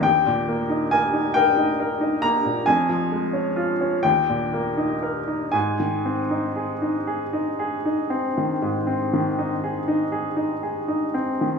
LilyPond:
\new Staff \with { instrumentName = "Grand piano" } { \time 12/8 \key aes \major \tempo 4. = 40 << { g''4 aes''8 g''4 bes''8 aes''4. g''4. | aes''1~ aes''4. r8 | } \\ { ees,16 bes,16 bes16 ees'16 bes'16 ees'16 bes'16 ees'16 bes'16 ees'16 bes16 bes,16 f,16 f16 aes16 des'16 f'16 des'16 ees,16 bes,16 bes16 ees'16 bes'16 ees'16 | aes,16 ees16 c'16 ees'16 aes'16 ees'16 aes'16 ees'16 aes'16 ees'16 c'16 ees16 aes,16 c'16 ees16 ees'16 aes'16 ees'16 aes'16 ees'16 aes'16 ees'16 c'16 ees16 | } >> }